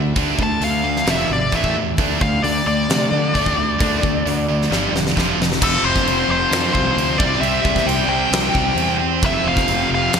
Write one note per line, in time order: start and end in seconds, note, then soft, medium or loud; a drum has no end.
0.00 0.12 D2 medium
0.00 0.14 D3 medium
0.00 0.14 A3 medium
0.16 0.36 D2 medium
0.16 0.38 D3 medium
0.16 0.38 A3 medium
0.16 0.39 D4 medium
0.16 kick medium
0.16 open hi-hat soft
0.39 0.58 D2 medium
0.39 0.60 D3 medium
0.39 0.60 A3 medium
0.39 kick medium
0.43 0.62 A5 medium
0.61 1.01 D2 medium
0.61 0.82 D3 medium
0.61 0.82 A3 medium
0.61 1.09 F5 medium
0.61 open hi-hat medium
0.84 1.04 D3 medium
0.84 1.04 A3 medium
0.97 snare soft
1.06 1.26 F1 medium
1.06 1.28 F2 medium
1.06 1.28 C3 medium
1.06 1.29 F3 loud
1.06 snare loud
1.06 open hi-hat medium
1.10 1.30 E5 medium
1.29 1.49 G#1 medium
1.29 1.50 F2 medium
1.29 1.50 C3 medium
1.29 1.54 D5 medium
1.52 1.72 A1 medium
1.52 1.74 A2 medium
1.52 1.74 E3 loud
1.52 1.74 A3 medium
1.52 kick medium
1.52 open hi-hat soft
1.56 1.75 E5 medium
1.64 kick medium
1.73 1.94 E2 medium
1.73 1.96 A2 medium
1.73 1.96 E3 medium
1.98 2.18 D2 medium
1.98 2.19 D3 medium
1.98 2.20 A3 medium
1.98 2.20 D4 medium
1.98 kick loud
1.98 open hi-hat soft
2.21 2.41 D2 medium
2.21 2.41 D3 medium
2.21 2.41 A3 medium
2.21 2.43 F5 medium
2.21 kick medium
2.43 2.63 D2 medium
2.43 2.64 D3 medium
2.43 2.64 A3 medium
2.43 2.66 D5 medium
2.43 open hi-hat medium
2.66 2.86 D2 medium
2.66 2.87 D3 medium
2.66 2.87 A3 medium
2.66 5.12 D5 medium
2.89 3.08 C3 medium
2.89 3.09 D3 medium
2.89 3.09 A3 medium
2.89 snare loud
2.89 open hi-hat soft
3.11 3.31 D3 medium
3.11 3.32 A3 medium
3.33 3.54 D2 medium
3.33 3.55 D3 medium
3.33 3.55 A3 loud
3.33 3.55 D4 medium
3.33 kick medium
3.33 open hi-hat soft
3.46 kick medium
3.56 3.77 D2 medium
3.56 3.77 D3 medium
3.56 3.77 A3 medium
3.79 4.00 D2 medium
3.79 4.00 D3 medium
3.79 4.01 A3 medium
3.79 4.01 D4 medium
3.79 kick loud
3.79 open hi-hat soft
4.02 4.23 D2 medium
4.02 4.22 D3 medium
4.02 4.23 A3 medium
4.02 kick medium
4.26 4.65 D2 medium
4.26 4.46 D3 medium
4.26 4.46 A3 medium
4.26 open hi-hat medium
4.48 4.68 D3 medium
4.48 4.69 A3 medium
4.62 snare soft
4.70 4.91 G1 medium
4.70 4.91 G2 medium
4.70 4.92 D3 medium
4.70 4.92 G3 medium
4.70 snare medium
4.92 5.12 E1 medium
4.92 5.14 G2 medium
4.92 5.14 D3 medium
4.92 snare medium
5.07 snare medium
5.16 5.36 F1 medium
5.16 5.37 F2 medium
5.16 5.37 C3 medium
5.16 5.38 F3 medium
5.16 kick medium
5.16 snare medium
5.38 5.58 F1 medium
5.38 5.59 F2 medium
5.38 5.59 C3 medium
5.42 snare medium
5.52 snare medium
5.61 5.78 F1 medium
5.61 6.50 F2 medium
5.61 6.52 C3 medium
5.61 6.52 F3 medium
5.61 10.20 G4 loud
5.61 5.83 A4 medium
5.61 kick loud
5.61 crash loud
5.61 crash medium
5.65 7.20 F3 medium
5.65 10.20 C4 medium
5.83 6.00 F1 medium
5.83 6.30 C5 medium
5.96 kick medium
5.96 snare soft
6.06 6.23 F1 medium
6.06 crash medium
6.29 6.46 F1 medium
6.29 6.73 C5 medium
6.51 7.18 F2 medium
6.51 6.68 F2 medium
6.51 7.16 C3 loud
6.51 7.19 F3 medium
6.51 snare loud
6.51 crash medium
6.74 6.91 C2 medium
6.74 7.16 C5 medium
6.74 kick medium
6.96 7.21 D2 medium
6.96 crash medium
7.17 7.36 C2 medium
7.17 8.07 C3 medium
7.17 8.09 G3 medium
7.17 7.40 D5 medium
7.17 kick loud
7.21 8.08 C4 medium
7.21 9.22 D5 medium
7.41 7.59 C2 loud
7.41 7.88 E5 loud
7.41 crash medium
7.65 7.81 C2 medium
7.65 kick medium
7.76 kick medium
7.76 snare soft
7.86 8.03 C2 medium
7.86 8.07 G5 loud
7.86 crash medium
8.08 8.25 C2 medium
8.08 8.99 G3 medium
8.08 10.20 C4 medium
8.08 8.96 G5 medium
8.13 9.00 C3 medium
8.32 8.49 C2 medium
8.32 snare loud
8.32 crash medium
8.55 8.72 C2 medium
8.55 kick medium
8.75 9.24 E2 medium
8.75 crash medium
9.22 9.39 F1 medium
9.22 10.12 F2 loud
9.22 10.13 C3 medium
9.22 10.20 F3 medium
9.22 10.13 F3 loud
9.22 9.45 E5 loud
9.22 kick loud
9.22 crash medium
9.44 9.61 F1 medium
9.44 9.89 F5 medium
9.57 kick medium
9.57 snare soft
9.68 9.85 F1 loud
9.68 crash medium
9.91 10.07 F1 loud
9.91 10.20 F5 medium
10.13 10.20 F2 medium
10.13 10.20 C3 medium
10.13 snare loud
10.13 crash medium